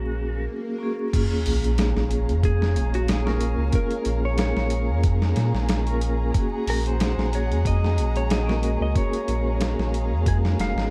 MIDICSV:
0, 0, Header, 1, 9, 480
1, 0, Start_track
1, 0, Key_signature, -5, "minor"
1, 0, Tempo, 652174
1, 830, Time_signature, 4, 2, 24, 8
1, 8025, End_track
2, 0, Start_track
2, 0, Title_t, "Violin section"
2, 0, Program_c, 0, 48
2, 0, Note_on_c, 0, 68, 67
2, 0, Note_on_c, 0, 73, 60
2, 0, Note_on_c, 0, 80, 69
2, 0, Note_on_c, 0, 82, 76
2, 316, Note_off_c, 0, 73, 0
2, 316, Note_off_c, 0, 82, 0
2, 317, Note_off_c, 0, 68, 0
2, 321, Note_off_c, 0, 80, 0
2, 841, Note_on_c, 0, 77, 77
2, 848, Note_on_c, 0, 68, 86
2, 848, Note_on_c, 0, 73, 73
2, 849, Note_on_c, 0, 82, 90
2, 4646, Note_off_c, 0, 77, 0
2, 4650, Note_off_c, 0, 73, 0
2, 4669, Note_on_c, 0, 61, 78
2, 4670, Note_on_c, 0, 78, 78
2, 6571, Note_off_c, 0, 78, 0
2, 6593, Note_on_c, 0, 77, 78
2, 8025, Note_off_c, 0, 61, 0
2, 8025, Note_off_c, 0, 68, 0
2, 8025, Note_off_c, 0, 77, 0
2, 8025, Note_off_c, 0, 82, 0
2, 8025, End_track
3, 0, Start_track
3, 0, Title_t, "Electric slide guitar"
3, 0, Program_c, 1, 29
3, 0, Note_on_c, 1, 66, 97
3, 330, Note_off_c, 1, 66, 0
3, 1803, Note_on_c, 1, 68, 89
3, 2170, Note_on_c, 1, 66, 89
3, 2178, Note_off_c, 1, 68, 0
3, 2277, Note_on_c, 1, 68, 90
3, 2278, Note_off_c, 1, 66, 0
3, 2759, Note_off_c, 1, 68, 0
3, 2762, Note_on_c, 1, 70, 103
3, 3126, Note_off_c, 1, 70, 0
3, 3129, Note_on_c, 1, 73, 105
3, 3229, Note_off_c, 1, 73, 0
3, 3238, Note_on_c, 1, 73, 99
3, 3684, Note_off_c, 1, 73, 0
3, 4929, Note_on_c, 1, 70, 89
3, 5054, Note_off_c, 1, 70, 0
3, 5056, Note_on_c, 1, 72, 95
3, 5374, Note_off_c, 1, 72, 0
3, 5408, Note_on_c, 1, 73, 86
3, 5643, Note_off_c, 1, 73, 0
3, 5646, Note_on_c, 1, 75, 98
3, 6011, Note_on_c, 1, 73, 100
3, 6019, Note_off_c, 1, 75, 0
3, 6108, Note_off_c, 1, 73, 0
3, 6118, Note_on_c, 1, 75, 106
3, 6484, Note_off_c, 1, 75, 0
3, 6493, Note_on_c, 1, 75, 99
3, 6589, Note_off_c, 1, 75, 0
3, 6605, Note_on_c, 1, 73, 109
3, 7566, Note_on_c, 1, 68, 93
3, 7586, Note_off_c, 1, 73, 0
3, 7629, Note_off_c, 1, 68, 0
3, 7808, Note_on_c, 1, 77, 106
3, 8025, Note_off_c, 1, 77, 0
3, 8025, End_track
4, 0, Start_track
4, 0, Title_t, "Vibraphone"
4, 0, Program_c, 2, 11
4, 0, Control_c, 2, 64, 127
4, 0, Note_on_c, 2, 58, 70
4, 0, Note_on_c, 2, 61, 67
4, 0, Note_on_c, 2, 66, 59
4, 0, Note_on_c, 2, 68, 74
4, 549, Note_off_c, 2, 58, 0
4, 561, Note_off_c, 2, 61, 0
4, 569, Note_off_c, 2, 66, 0
4, 577, Note_off_c, 2, 68, 0
4, 578, Note_on_c, 2, 58, 88
4, 585, Note_on_c, 2, 61, 81
4, 599, Note_on_c, 2, 66, 79
4, 608, Note_on_c, 2, 68, 97
4, 798, Note_off_c, 2, 58, 0
4, 801, Note_off_c, 2, 61, 0
4, 808, Note_off_c, 2, 66, 0
4, 808, Note_on_c, 2, 58, 81
4, 813, Note_off_c, 2, 68, 0
4, 823, Note_on_c, 2, 61, 69
4, 838, Control_c, 2, 64, 0
4, 845, Note_on_c, 2, 65, 71
4, 863, Note_on_c, 2, 68, 84
4, 970, Control_c, 2, 64, 127
4, 2363, Note_off_c, 2, 58, 0
4, 2371, Note_off_c, 2, 61, 0
4, 2382, Note_off_c, 2, 65, 0
4, 2389, Note_on_c, 2, 58, 85
4, 2391, Note_off_c, 2, 68, 0
4, 2398, Note_on_c, 2, 61, 82
4, 2404, Note_on_c, 2, 65, 77
4, 2417, Note_on_c, 2, 70, 99
4, 2714, Note_off_c, 2, 58, 0
4, 2722, Note_off_c, 2, 61, 0
4, 2723, Note_on_c, 2, 58, 73
4, 2725, Note_off_c, 2, 65, 0
4, 2732, Note_off_c, 2, 70, 0
4, 2743, Note_on_c, 2, 61, 73
4, 2761, Note_on_c, 2, 65, 71
4, 2779, Note_on_c, 2, 68, 84
4, 4281, Note_off_c, 2, 58, 0
4, 4291, Note_off_c, 2, 61, 0
4, 4300, Note_off_c, 2, 65, 0
4, 4307, Note_on_c, 2, 58, 84
4, 4309, Note_off_c, 2, 68, 0
4, 4319, Note_on_c, 2, 61, 82
4, 4327, Note_on_c, 2, 65, 78
4, 4339, Note_on_c, 2, 70, 95
4, 4629, Note_off_c, 2, 58, 0
4, 4638, Note_on_c, 2, 58, 76
4, 4643, Note_off_c, 2, 61, 0
4, 4647, Note_off_c, 2, 65, 0
4, 4653, Note_off_c, 2, 70, 0
4, 4654, Note_on_c, 2, 61, 73
4, 4673, Note_on_c, 2, 66, 70
4, 4680, Control_c, 2, 64, 0
4, 4690, Note_on_c, 2, 68, 89
4, 4808, Control_c, 2, 64, 127
4, 6198, Note_off_c, 2, 58, 0
4, 6206, Note_off_c, 2, 61, 0
4, 6216, Note_off_c, 2, 66, 0
4, 6223, Note_on_c, 2, 58, 88
4, 6224, Note_off_c, 2, 68, 0
4, 6234, Note_on_c, 2, 61, 80
4, 6243, Note_on_c, 2, 66, 77
4, 6250, Note_on_c, 2, 70, 101
4, 6555, Note_off_c, 2, 58, 0
4, 6560, Note_off_c, 2, 61, 0
4, 6565, Note_off_c, 2, 66, 0
4, 6565, Note_on_c, 2, 58, 76
4, 6568, Note_off_c, 2, 70, 0
4, 6583, Note_on_c, 2, 61, 68
4, 6604, Note_on_c, 2, 66, 66
4, 6618, Note_on_c, 2, 68, 81
4, 8025, Note_off_c, 2, 58, 0
4, 8025, Note_off_c, 2, 61, 0
4, 8025, Note_off_c, 2, 66, 0
4, 8025, Note_off_c, 2, 68, 0
4, 8025, End_track
5, 0, Start_track
5, 0, Title_t, "Synth drone"
5, 0, Program_c, 3, 95
5, 0, Note_on_c, 3, 56, 79
5, 0, Note_on_c, 3, 77, 80
5, 344, Note_off_c, 3, 77, 0
5, 346, Note_off_c, 3, 56, 0
5, 825, Note_on_c, 3, 56, 89
5, 830, Note_on_c, 3, 68, 83
5, 8025, Note_off_c, 3, 56, 0
5, 8025, Note_off_c, 3, 68, 0
5, 8025, End_track
6, 0, Start_track
6, 0, Title_t, "Sub bass"
6, 0, Program_c, 4, 38
6, 0, Note_on_c, 4, 34, 85
6, 350, Note_off_c, 4, 34, 0
6, 1074, Note_on_c, 4, 34, 102
6, 1417, Note_off_c, 4, 34, 0
6, 1445, Note_on_c, 4, 34, 85
6, 1686, Note_on_c, 4, 41, 89
6, 1697, Note_off_c, 4, 34, 0
6, 2027, Note_on_c, 4, 34, 89
6, 2038, Note_off_c, 4, 41, 0
6, 2614, Note_off_c, 4, 34, 0
6, 2631, Note_on_c, 4, 37, 85
6, 2732, Note_off_c, 4, 37, 0
6, 2986, Note_on_c, 4, 34, 99
6, 3333, Note_off_c, 4, 34, 0
6, 3360, Note_on_c, 4, 34, 85
6, 3600, Note_on_c, 4, 41, 87
6, 3611, Note_off_c, 4, 34, 0
6, 3929, Note_off_c, 4, 41, 0
6, 3948, Note_on_c, 4, 46, 106
6, 4064, Note_off_c, 4, 46, 0
6, 4078, Note_on_c, 4, 34, 98
6, 4648, Note_off_c, 4, 34, 0
6, 4908, Note_on_c, 4, 34, 92
6, 5255, Note_off_c, 4, 34, 0
6, 5279, Note_on_c, 4, 34, 82
6, 5523, Note_on_c, 4, 41, 90
6, 5534, Note_off_c, 4, 34, 0
6, 5869, Note_on_c, 4, 34, 97
6, 5880, Note_off_c, 4, 41, 0
6, 6455, Note_off_c, 4, 34, 0
6, 6481, Note_on_c, 4, 37, 86
6, 6577, Note_off_c, 4, 37, 0
6, 6831, Note_on_c, 4, 34, 93
6, 7176, Note_off_c, 4, 34, 0
6, 7202, Note_on_c, 4, 34, 84
6, 7441, Note_on_c, 4, 41, 87
6, 7452, Note_off_c, 4, 34, 0
6, 7769, Note_off_c, 4, 41, 0
6, 7788, Note_on_c, 4, 29, 88
6, 7904, Note_off_c, 4, 29, 0
6, 7915, Note_on_c, 4, 32, 81
6, 8025, Note_off_c, 4, 32, 0
6, 8025, End_track
7, 0, Start_track
7, 0, Title_t, "Sub drop"
7, 0, Program_c, 5, 103
7, 829, Note_on_c, 5, 60, 78
7, 2750, Note_off_c, 5, 60, 0
7, 8025, End_track
8, 0, Start_track
8, 0, Title_t, "Swell"
8, 0, Program_c, 6, 103
8, 0, Note_on_c, 6, 60, 63
8, 830, Note_off_c, 6, 60, 0
8, 8025, End_track
9, 0, Start_track
9, 0, Title_t, "Drums"
9, 834, Note_on_c, 9, 36, 107
9, 836, Note_on_c, 9, 42, 80
9, 836, Note_on_c, 9, 49, 80
9, 908, Note_off_c, 9, 36, 0
9, 910, Note_off_c, 9, 42, 0
9, 910, Note_off_c, 9, 49, 0
9, 1073, Note_on_c, 9, 46, 81
9, 1146, Note_off_c, 9, 46, 0
9, 1209, Note_on_c, 9, 42, 44
9, 1282, Note_off_c, 9, 42, 0
9, 1310, Note_on_c, 9, 42, 88
9, 1316, Note_on_c, 9, 38, 121
9, 1384, Note_off_c, 9, 42, 0
9, 1390, Note_off_c, 9, 38, 0
9, 1447, Note_on_c, 9, 38, 47
9, 1520, Note_off_c, 9, 38, 0
9, 1550, Note_on_c, 9, 42, 69
9, 1624, Note_off_c, 9, 42, 0
9, 1687, Note_on_c, 9, 42, 42
9, 1760, Note_off_c, 9, 42, 0
9, 1792, Note_on_c, 9, 36, 107
9, 1792, Note_on_c, 9, 42, 88
9, 1865, Note_off_c, 9, 36, 0
9, 1866, Note_off_c, 9, 42, 0
9, 1930, Note_on_c, 9, 38, 39
9, 2003, Note_off_c, 9, 38, 0
9, 2032, Note_on_c, 9, 42, 65
9, 2106, Note_off_c, 9, 42, 0
9, 2164, Note_on_c, 9, 42, 45
9, 2237, Note_off_c, 9, 42, 0
9, 2269, Note_on_c, 9, 42, 92
9, 2275, Note_on_c, 9, 38, 121
9, 2343, Note_off_c, 9, 42, 0
9, 2349, Note_off_c, 9, 38, 0
9, 2405, Note_on_c, 9, 38, 52
9, 2479, Note_off_c, 9, 38, 0
9, 2506, Note_on_c, 9, 42, 67
9, 2580, Note_off_c, 9, 42, 0
9, 2742, Note_on_c, 9, 42, 83
9, 2747, Note_on_c, 9, 36, 106
9, 2815, Note_off_c, 9, 42, 0
9, 2820, Note_off_c, 9, 36, 0
9, 2875, Note_on_c, 9, 42, 44
9, 2948, Note_off_c, 9, 42, 0
9, 2981, Note_on_c, 9, 42, 66
9, 3054, Note_off_c, 9, 42, 0
9, 3221, Note_on_c, 9, 42, 85
9, 3227, Note_on_c, 9, 38, 116
9, 3295, Note_off_c, 9, 42, 0
9, 3301, Note_off_c, 9, 38, 0
9, 3360, Note_on_c, 9, 38, 45
9, 3434, Note_off_c, 9, 38, 0
9, 3460, Note_on_c, 9, 42, 70
9, 3534, Note_off_c, 9, 42, 0
9, 3705, Note_on_c, 9, 42, 94
9, 3707, Note_on_c, 9, 36, 111
9, 3779, Note_off_c, 9, 42, 0
9, 3781, Note_off_c, 9, 36, 0
9, 3842, Note_on_c, 9, 38, 53
9, 3915, Note_off_c, 9, 38, 0
9, 3944, Note_on_c, 9, 42, 72
9, 3950, Note_on_c, 9, 38, 56
9, 4018, Note_off_c, 9, 42, 0
9, 4024, Note_off_c, 9, 38, 0
9, 4082, Note_on_c, 9, 38, 40
9, 4156, Note_off_c, 9, 38, 0
9, 4185, Note_on_c, 9, 42, 86
9, 4191, Note_on_c, 9, 38, 116
9, 4259, Note_off_c, 9, 42, 0
9, 4265, Note_off_c, 9, 38, 0
9, 4318, Note_on_c, 9, 42, 44
9, 4392, Note_off_c, 9, 42, 0
9, 4427, Note_on_c, 9, 42, 65
9, 4500, Note_off_c, 9, 42, 0
9, 4669, Note_on_c, 9, 36, 99
9, 4669, Note_on_c, 9, 42, 84
9, 4743, Note_off_c, 9, 36, 0
9, 4743, Note_off_c, 9, 42, 0
9, 4912, Note_on_c, 9, 46, 83
9, 4986, Note_off_c, 9, 46, 0
9, 5048, Note_on_c, 9, 42, 45
9, 5122, Note_off_c, 9, 42, 0
9, 5154, Note_on_c, 9, 42, 88
9, 5160, Note_on_c, 9, 38, 117
9, 5228, Note_off_c, 9, 42, 0
9, 5233, Note_off_c, 9, 38, 0
9, 5293, Note_on_c, 9, 38, 49
9, 5366, Note_off_c, 9, 38, 0
9, 5395, Note_on_c, 9, 42, 68
9, 5469, Note_off_c, 9, 42, 0
9, 5532, Note_on_c, 9, 42, 39
9, 5606, Note_off_c, 9, 42, 0
9, 5633, Note_on_c, 9, 36, 106
9, 5636, Note_on_c, 9, 42, 85
9, 5706, Note_off_c, 9, 36, 0
9, 5709, Note_off_c, 9, 42, 0
9, 5774, Note_on_c, 9, 38, 37
9, 5848, Note_off_c, 9, 38, 0
9, 5873, Note_on_c, 9, 42, 66
9, 5947, Note_off_c, 9, 42, 0
9, 6003, Note_on_c, 9, 42, 44
9, 6077, Note_off_c, 9, 42, 0
9, 6111, Note_on_c, 9, 42, 86
9, 6117, Note_on_c, 9, 38, 120
9, 6185, Note_off_c, 9, 42, 0
9, 6191, Note_off_c, 9, 38, 0
9, 6251, Note_on_c, 9, 38, 58
9, 6324, Note_off_c, 9, 38, 0
9, 6351, Note_on_c, 9, 42, 68
9, 6425, Note_off_c, 9, 42, 0
9, 6591, Note_on_c, 9, 36, 109
9, 6592, Note_on_c, 9, 42, 82
9, 6665, Note_off_c, 9, 36, 0
9, 6665, Note_off_c, 9, 42, 0
9, 6723, Note_on_c, 9, 42, 45
9, 6796, Note_off_c, 9, 42, 0
9, 6831, Note_on_c, 9, 42, 70
9, 6904, Note_off_c, 9, 42, 0
9, 7070, Note_on_c, 9, 42, 93
9, 7076, Note_on_c, 9, 38, 117
9, 7144, Note_off_c, 9, 42, 0
9, 7150, Note_off_c, 9, 38, 0
9, 7209, Note_on_c, 9, 38, 44
9, 7282, Note_off_c, 9, 38, 0
9, 7317, Note_on_c, 9, 42, 66
9, 7390, Note_off_c, 9, 42, 0
9, 7553, Note_on_c, 9, 36, 117
9, 7554, Note_on_c, 9, 42, 91
9, 7627, Note_off_c, 9, 36, 0
9, 7627, Note_off_c, 9, 42, 0
9, 7690, Note_on_c, 9, 38, 51
9, 7764, Note_off_c, 9, 38, 0
9, 7798, Note_on_c, 9, 42, 66
9, 7804, Note_on_c, 9, 38, 58
9, 7871, Note_off_c, 9, 42, 0
9, 7877, Note_off_c, 9, 38, 0
9, 7933, Note_on_c, 9, 38, 40
9, 8006, Note_off_c, 9, 38, 0
9, 8025, End_track
0, 0, End_of_file